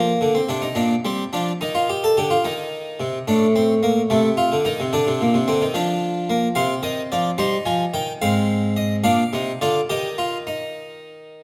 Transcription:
0.00 0.11 F3 medium
0.00 0.34 A#3 medium
0.21 0.39 D3 medium
0.35 0.49 C4 medium
0.49 0.66 C3 medium
0.49 0.63 D4 medium
0.62 0.76 D#4 medium
0.75 0.93 A#2 medium
0.75 0.93 D4 medium
1.05 1.22 G3 medium
1.05 1.22 C4 medium
1.33 1.51 F3 medium
1.33 1.50 D4 medium
1.61 2.15 D#3 medium
1.61 1.74 D#4 medium
1.75 1.88 F4 medium
1.89 2.03 G4 medium
2.04 2.17 A4 medium
2.17 2.34 D3 medium
2.17 2.31 G4 medium
2.30 2.44 F4 medium
2.44 2.98 D#3 medium
2.44 3.25 D#4 medium
3.00 3.17 C3 medium
3.28 4.08 A2 medium
3.28 3.45 D4 medium
3.56 3.73 C4 loud
3.83 4.00 A#3 medium
4.10 4.50 C3 medium
4.10 4.27 A3 loud
4.37 4.55 F4 medium
4.52 4.65 D3 medium
4.65 4.79 D#3 medium
4.65 4.82 D#4 medium
4.80 4.93 C3 medium
4.93 5.06 D3 medium
4.93 5.46 D4 medium
5.07 5.20 C3 medium
5.21 5.34 A#2 medium
5.34 5.47 C3 medium
5.48 5.61 D3 medium
5.48 5.65 C4 medium
5.61 5.75 D#3 medium
5.74 6.54 F3 medium
5.74 6.28 D4 loud
6.29 6.46 A#3 medium
6.55 6.73 C3 medium
6.55 7.36 C4 medium
6.55 6.73 F5 medium
6.83 7.00 D#3 medium
6.83 7.00 D#5 loud
7.12 7.29 F3 medium
7.12 7.29 D5 medium
7.38 7.56 G3 medium
7.38 8.19 D#4 medium
7.38 7.56 C5 medium
7.66 7.83 F3 medium
7.66 7.83 G#5 medium
7.94 8.11 D#3 medium
7.94 8.11 G5 loud
8.22 9.02 G#2 medium
8.22 9.02 C4 medium
8.22 8.75 F5 medium
8.77 8.94 D#5 medium
9.04 9.21 A#2 medium
9.04 9.21 D4 medium
9.04 9.59 F5 medium
9.33 9.50 C3 medium
9.33 9.51 D#4 medium
9.61 9.79 D3 medium
9.61 9.79 F4 medium
9.61 9.79 D5 medium
9.89 11.43 D#3 medium
9.89 10.07 G4 medium
9.89 11.43 D#5 medium
10.18 10.36 F4 medium
10.47 11.43 D#4 medium

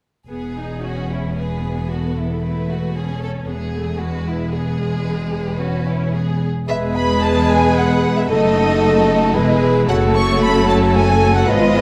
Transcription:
0.29 3.44 E1 soft
0.29 3.44 E2 soft
0.29 0.55 B3 soft
0.29 0.80 G#4 soft
0.29 1.33 G#4 soft
0.58 0.84 D#4 soft
0.83 1.38 C#4 soft
0.83 1.10 F#4 soft
1.09 1.37 E4 soft
1.36 2.43 B3 soft
1.36 1.89 G#4 soft
1.36 1.63 B4 soft
1.64 1.72 B4 soft
1.89 2.16 F#4 soft
1.89 2.42 A4 soft
2.16 2.42 E4 soft
2.43 2.95 A3 soft
2.43 2.69 E4 soft
2.43 2.96 B4 soft
2.70 2.96 F#4 soft
2.96 3.48 C#4 soft
2.96 3.22 G#4 soft
2.96 3.47 A4 soft
3.22 3.30 A4 soft
3.48 6.44 E1 soft
3.48 6.44 E2 soft
3.48 3.74 B3 soft
3.48 3.99 G#4 soft
3.48 4.00 G#4 soft
3.75 4.00 A3 soft
4.00 4.53 G#3 soft
4.00 4.26 F#4 soft
4.00 4.52 B4 soft
4.26 4.52 E4 soft
4.52 4.79 B3 soft
4.52 5.05 G#4 soft
4.52 5.59 G#4 soft
4.79 5.59 G#3 soft
5.05 5.13 B4 soft
5.32 6.12 B4 soft
5.59 6.14 C#4 soft
5.59 5.87 F#4 soft
5.87 6.14 E4 soft
6.13 6.49 B3 soft
6.13 6.47 G#4 soft
6.13 6.48 G#4 soft
6.68 8.26 E1 medium
6.68 8.26 E2 medium
6.68 8.26 G#3 medium
6.68 8.27 G#3 medium
6.68 8.26 B3 medium
6.68 8.26 G#4 medium
6.68 8.27 G#4 medium
6.68 8.27 B4 medium
6.68 6.97 E5 medium
6.68 6.77 E5 medium
6.96 7.21 B5 medium
6.96 7.22 B5 medium
7.22 7.28 A5 medium
7.22 7.49 A5 medium
7.49 7.76 G#5 medium
7.49 7.77 G#5 medium
7.76 8.17 F#5 medium
7.76 8.16 F#5 medium
8.17 8.23 E5 medium
8.17 8.31 E5 medium
8.30 9.33 F#1 medium
8.30 9.33 F#2 medium
8.30 9.35 A3 medium
8.30 9.37 A3 medium
8.30 9.33 A3 medium
8.30 9.33 D#4 medium
8.30 9.34 F#4 medium
8.30 9.33 A4 medium
8.30 9.36 A4 medium
8.30 9.33 A4 medium
8.30 9.59 D#5 medium
8.30 9.60 D#5 medium
9.35 9.88 E1 medium
9.35 9.89 E2 medium
9.35 9.89 G#3 medium
9.35 9.89 B3 medium
9.35 9.89 E4 medium
9.35 9.89 G#4 medium
9.35 9.87 B4 medium
9.35 9.89 B4 medium
9.88 11.45 F#1 medium
9.88 11.45 F#2 medium
9.88 11.51 F#3 medium
9.88 11.48 A3 medium
9.88 11.46 A3 medium
9.88 11.45 C#4 medium
9.88 11.45 F#4 medium
9.88 11.46 F#4 medium
9.88 11.45 A4 medium
9.88 11.50 A4 medium
9.88 10.16 F#5 medium
9.88 9.97 F#5 medium
10.15 10.41 C#6 medium
10.41 10.68 B5 medium
10.68 10.74 A5 medium
10.68 10.77 A5 medium
10.94 11.37 G#5 medium
10.94 11.35 G#5 medium
11.35 11.51 F#5 medium
11.35 11.50 F#5 medium
11.48 11.81 G#1 medium
11.48 11.81 G#2 medium
11.48 11.81 F3 medium
11.48 11.81 G#3 medium
11.48 11.81 B3 medium
11.48 11.81 F4 medium
11.48 11.81 B4 medium
11.48 11.81 D#5 loud
11.48 11.81 D#5 medium

